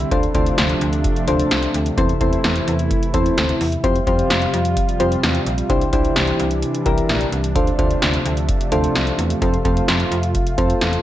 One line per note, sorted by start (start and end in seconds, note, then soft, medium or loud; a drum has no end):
0.00 closed hi-hat medium
0.11 0.28 D2 medium
0.11 3.80 C3 medium
0.11 1.96 F3 medium
0.11 1.96 A3 medium
0.11 0.25 D4 medium
0.11 1.96 D4 medium
0.11 0.25 F4 medium
0.11 0.25 A4 medium
0.11 0.25 C5 loud
0.11 kick loud
0.11 closed hi-hat medium
0.23 closed hi-hat soft
0.35 0.51 D2 loud
0.35 0.88 D4 medium
0.35 0.88 F4 medium
0.35 0.88 A4 medium
0.35 0.88 C5 medium
0.35 kick loud
0.35 closed hi-hat medium
0.46 closed hi-hat medium
0.58 0.74 D2 loud
0.58 snare loud
0.58 closed hi-hat medium
0.69 closed hi-hat soft
0.81 1.06 D2 loud
0.81 closed hi-hat medium
0.93 closed hi-hat medium
1.04 kick medium
1.04 closed hi-hat medium
1.16 closed hi-hat medium
1.28 1.44 D2 loud
1.28 1.68 D4 medium
1.28 1.68 F4 medium
1.28 1.68 A4 medium
1.28 1.68 C5 medium
1.28 closed hi-hat medium
1.40 closed hi-hat medium
1.51 1.67 C2 loud
1.51 snare loud
1.51 closed hi-hat medium
1.63 closed hi-hat medium
1.74 1.91 D2 medium
1.74 closed hi-hat medium
1.86 closed hi-hat medium
1.97 2.14 E2 loud
1.97 3.82 E3 medium
1.97 3.82 A3 medium
1.97 2.11 C4 medium
1.97 3.82 E4 medium
1.97 2.11 E4 medium
1.97 2.11 A4 medium
1.97 2.11 C5 loud
1.97 kick loud
1.97 closed hi-hat medium
2.09 closed hi-hat soft
2.21 2.37 E2 medium
2.21 2.74 C4 medium
2.21 2.74 E4 medium
2.21 2.74 A4 medium
2.21 2.74 C5 medium
2.21 kick loud
2.21 closed hi-hat medium
2.33 closed hi-hat medium
2.44 2.60 E2 loud
2.44 snare loud
2.44 closed hi-hat medium
2.56 closed hi-hat soft
2.67 2.92 E2 loud
2.67 closed hi-hat medium
2.79 closed hi-hat medium
2.91 kick loud
2.91 closed hi-hat medium
3.03 closed hi-hat medium
3.14 3.30 E2 medium
3.14 3.54 C4 medium
3.14 3.54 E4 medium
3.14 3.54 A4 medium
3.14 3.54 C5 medium
3.14 kick medium
3.14 closed hi-hat medium
3.26 closed hi-hat medium
3.37 3.54 D2 medium
3.37 snare loud
3.37 closed hi-hat medium
3.49 closed hi-hat soft
3.61 3.77 E2 loud
3.61 open hi-hat medium
3.72 closed hi-hat medium
3.84 4.00 F2 loud
3.84 7.52 C3 medium
3.84 5.68 F3 medium
3.84 7.52 G3 medium
3.84 3.97 C4 medium
3.84 3.97 F4 medium
3.84 5.68 F4 medium
3.84 3.97 G4 medium
3.84 3.97 C5 loud
3.84 kick loud
3.84 closed hi-hat medium
3.96 closed hi-hat soft
4.07 4.23 F2 loud
4.07 4.60 C4 medium
4.07 4.60 F4 medium
4.07 4.60 G4 medium
4.07 4.60 C5 medium
4.07 kick loud
4.07 closed hi-hat medium
4.19 closed hi-hat medium
4.30 4.46 F2 loud
4.30 snare loud
4.30 closed hi-hat medium
4.42 closed hi-hat soft
4.53 4.78 F2 loud
4.53 closed hi-hat medium
4.65 closed hi-hat medium
4.77 kick medium
4.77 closed hi-hat medium
4.89 closed hi-hat medium
5.00 5.16 F2 loud
5.00 5.40 C4 medium
5.00 5.40 F4 medium
5.00 5.40 G4 medium
5.00 5.40 C5 medium
5.00 closed hi-hat medium
5.12 closed hi-hat medium
5.23 5.39 E2 loud
5.23 snare loud
5.23 closed hi-hat medium
5.35 closed hi-hat medium
5.46 5.63 A#1 medium
5.46 closed hi-hat medium
5.58 closed hi-hat medium
5.70 5.86 C2 loud
5.70 7.54 E3 medium
5.70 9.38 D4 medium
5.70 5.83 D4 medium
5.70 5.83 E4 medium
5.70 5.83 G4 medium
5.70 5.83 C5 medium
5.70 kick loud
5.70 closed hi-hat medium
5.81 closed hi-hat soft
5.93 6.09 C2 loud
5.93 6.46 D4 medium
5.93 6.46 E4 medium
5.93 6.46 G4 medium
5.93 6.46 C5 medium
5.93 kick loud
5.93 closed hi-hat medium
6.05 closed hi-hat medium
6.16 6.32 C2 loud
6.16 snare loud
6.16 closed hi-hat medium
6.27 closed hi-hat soft
6.39 6.64 C2 loud
6.39 closed hi-hat medium
6.51 closed hi-hat medium
6.62 closed hi-hat medium
6.75 closed hi-hat medium
6.86 7.02 C2 medium
6.86 7.26 D4 medium
6.86 7.26 E4 medium
6.86 7.26 G4 medium
6.86 7.26 A#4 loud
6.86 kick medium
6.86 closed hi-hat medium
6.98 closed hi-hat medium
7.09 7.25 A#1 loud
7.09 snare loud
7.09 closed hi-hat medium
7.21 closed hi-hat soft
7.32 7.57 C2 medium
7.32 closed hi-hat medium
7.44 closed hi-hat medium
7.55 7.72 D2 loud
7.55 11.02 C3 medium
7.55 11.02 F3 medium
7.55 11.02 A3 medium
7.55 7.69 D4 medium
7.55 7.69 F4 medium
7.55 7.69 A4 medium
7.55 7.69 C5 medium
7.55 kick loud
7.55 closed hi-hat medium
7.67 closed hi-hat soft
7.79 7.95 D2 medium
7.79 8.32 D4 medium
7.79 8.32 F4 medium
7.79 8.32 A4 medium
7.79 8.32 C5 medium
7.79 kick loud
7.79 closed hi-hat medium
7.91 closed hi-hat medium
8.02 8.18 D2 loud
8.02 snare loud
8.02 closed hi-hat medium
8.14 closed hi-hat soft
8.25 8.50 D2 loud
8.25 closed hi-hat medium
8.37 closed hi-hat medium
8.49 kick loud
8.49 closed hi-hat medium
8.61 closed hi-hat medium
8.72 8.88 D2 medium
8.72 9.12 D4 medium
8.72 9.12 F4 medium
8.72 9.12 A4 medium
8.72 9.12 C5 medium
8.72 closed hi-hat medium
8.84 closed hi-hat medium
8.95 9.11 C2 loud
8.95 snare loud
8.95 closed hi-hat medium
9.07 closed hi-hat medium
9.18 9.35 E2 medium
9.18 closed hi-hat medium
9.30 closed hi-hat medium
9.42 9.58 F2 loud
9.42 9.55 C4 medium
9.42 11.02 F4 medium
9.42 9.55 F4 medium
9.42 9.55 A4 medium
9.42 9.55 C5 medium
9.42 kick loud
9.42 closed hi-hat medium
9.54 closed hi-hat soft
9.65 9.81 F2 loud
9.65 10.18 C4 medium
9.65 10.18 F4 medium
9.65 10.18 A4 medium
9.65 10.18 C5 medium
9.65 kick loud
9.65 closed hi-hat medium
9.77 closed hi-hat medium
9.88 10.04 F2 loud
9.88 snare loud
9.88 closed hi-hat medium
10.00 closed hi-hat soft
10.11 10.36 F2 loud
10.11 closed hi-hat medium
10.23 closed hi-hat medium
10.35 kick medium
10.35 closed hi-hat medium
10.47 closed hi-hat medium
10.58 10.74 F2 loud
10.58 10.98 C4 medium
10.58 10.98 F4 medium
10.58 10.98 A4 medium
10.58 10.98 C5 medium
10.58 kick loud
10.58 closed hi-hat medium
10.70 closed hi-hat medium
10.81 10.98 E2 medium
10.81 snare loud
10.81 closed hi-hat medium
10.93 closed hi-hat soft